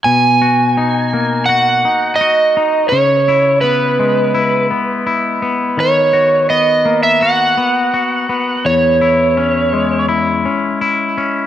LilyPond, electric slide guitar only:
\new Staff \with { instrumentName = "Electric slide guitar" } { \time 4/4 \key b \major \tempo 4 = 84 gis''2 fis''4 dis''4 | cis''4 b'4. r4. | cis''4 dis''8. e''16 fis''2 | cis''2 r2 | }